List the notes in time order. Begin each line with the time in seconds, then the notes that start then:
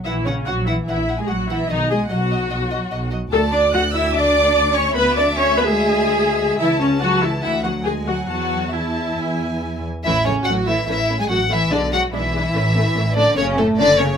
0.04 A#1 E3 E4 E5 F#5
0.25 C#3 C#4 C#5 F#5
0.46 A#1 F#3 F#4 F#5
0.67 E3 E4 E5 F#5
0.88 A#1 E3 E4 E5 F#5
1.08 F#5
1.18 G#3 G#4 G#5
1.28 A#1 F#3 F#4 F#5
1.50 E3 E4 E5 F#5
1.69 B1 D#3 D#4 D#5
1.91 G#3 G#4 D#5 G#5
2.10 B1 F#3 F#4 D#5 F#5
2.31 D#5
2.50 B1 D#5
2.71 D#5
2.91 B1 D#5
3.11 D#5
3.32 D2 A3 A4 D5 A5
3.51 D4 D5 D6
3.72 F#4 D5 F#5 F#6
3.93 E4 E5 E6
4.14 D4 D5 D6
4.74 C#4 C#5 C#6
4.94 D2 B3 B4 E5 B5
5.14 D4 D5 D6
5.36 C#4 C#5 C#6
5.56 B3 B4 B5
5.66 G#3 G#4 G#5
6.59 C#2 E3 E4 E5 A5
6.80 C#3 C#4 C#5
6.99 F#3 F#4 F#5
7.21 E3 E4 E5
7.42 D2 E3 E4 E5 F#5
7.63 F#3 F#4 F#5
7.84 G#3 G#4 G#5
8.06 F#3 F#4 F#5
8.28 E2 F#3 F#4 F#5 A5
8.73 E3 E4 E5 A5
9.17 E2 G#5
10.04 A1 E3 A3 C#4 E4 E5
10.26 C#3 A3 C#4 C#5
10.45 A1 F#3 A3 C#4 F#4 F#5
10.66 E3 A3 C#4 E4 E5
10.87 A1 E3 A3 C#4 E4 E5
11.09 A3 C#4
11.19 G#3 G#4 G#5
11.28 A1 F#3 A3 C#4 F#4 F#5
11.50 E3 A3 C#4 E4 E5
11.71 B1 D3 G#3 D4 D5
11.92 F#3 G#3 D4 F#4 F#5
12.12 B1 E3 G#3 D4 E4 E5
12.33 G#3 D4
12.53 A1 A3 C#4
12.75 A3 C#4
12.95 A1 A3 C#4
13.15 D3 A3 C#4 D4 D5
13.36 F#1 C#3 A3 C#4 C#5
13.56 A2 A3 C#4 A4
13.77 F#1 D3 A3 C#4 D4 D5
13.98 C#3 A3 C#4 C#5